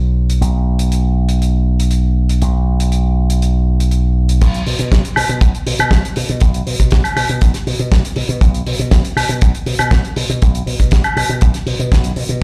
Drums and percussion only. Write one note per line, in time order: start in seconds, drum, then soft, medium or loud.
0.30 closed hi-hat medium
0.42 closed hi-hat medium
0.79 closed hi-hat medium
0.92 closed hi-hat medium
1.29 closed hi-hat medium
1.42 closed hi-hat medium
1.80 closed hi-hat medium
1.91 closed hi-hat medium
2.29 closed hi-hat medium
2.42 closed hi-hat medium
2.80 closed hi-hat medium
2.92 closed hi-hat medium
3.30 closed hi-hat medium
3.42 closed hi-hat medium
3.80 closed hi-hat medium
3.91 closed hi-hat medium
4.29 closed hi-hat medium
4.41 kick loud
4.41 closed hi-hat medium
4.41 crash medium
4.54 closed hi-hat medium
4.66 open hi-hat loud
4.79 closed hi-hat medium
4.92 kick loud
4.92 snare loud
4.92 closed hi-hat medium
5.05 closed hi-hat medium
5.16 open hi-hat loud
5.16 high woodblock medium
5.30 closed hi-hat medium
5.41 kick loud
5.41 closed hi-hat medium
5.55 closed hi-hat medium
5.67 open hi-hat loud
5.79 closed hi-hat medium
5.79 high woodblock medium
5.91 kick loud
5.91 snare loud
5.91 closed hi-hat medium
6.05 closed hi-hat medium
6.16 open hi-hat loud
6.29 closed hi-hat medium
6.40 kick loud
6.40 closed hi-hat medium
6.54 closed hi-hat medium
6.67 open hi-hat loud
6.80 kick medium
6.80 closed hi-hat medium
6.91 kick loud
6.91 snare loud
6.91 closed hi-hat medium
7.04 closed hi-hat medium
7.04 high woodblock medium
7.17 open hi-hat loud
7.17 high woodblock medium
7.29 closed hi-hat medium
7.41 kick loud
7.41 closed hi-hat medium
7.54 snare soft
7.54 closed hi-hat medium
7.67 open hi-hat loud
7.79 closed hi-hat medium
7.92 kick loud
7.92 snare loud
7.92 closed hi-hat medium
8.05 closed hi-hat medium
8.16 open hi-hat loud
8.29 closed hi-hat medium
8.41 kick loud
8.41 closed hi-hat medium
8.54 closed hi-hat medium
8.66 open hi-hat loud
8.79 closed hi-hat medium
8.91 kick loud
8.91 snare loud
8.91 closed hi-hat medium
9.05 closed hi-hat medium
9.17 open hi-hat loud
9.17 high woodblock medium
9.29 closed hi-hat medium
9.41 kick loud
9.41 closed hi-hat medium
9.55 closed hi-hat medium
9.66 open hi-hat loud
9.79 closed hi-hat medium
9.79 high woodblock medium
9.91 kick loud
9.91 snare loud
9.91 closed hi-hat medium
10.05 closed hi-hat soft
10.16 open hi-hat loud
10.30 closed hi-hat medium
10.42 kick loud
10.42 closed hi-hat medium
10.55 closed hi-hat medium
10.67 open hi-hat loud
10.80 kick medium
10.80 closed hi-hat medium
10.91 kick loud
10.91 snare loud
10.91 closed hi-hat medium
11.04 closed hi-hat medium
11.04 high woodblock medium
11.17 open hi-hat loud
11.17 high woodblock medium
11.30 closed hi-hat medium
11.41 kick loud
11.41 closed hi-hat medium
11.54 snare soft
11.54 closed hi-hat medium
11.67 open hi-hat loud
11.80 closed hi-hat soft
11.92 kick loud
11.92 snare loud
11.92 closed hi-hat medium
12.04 closed hi-hat medium
12.16 open hi-hat loud
12.29 closed hi-hat soft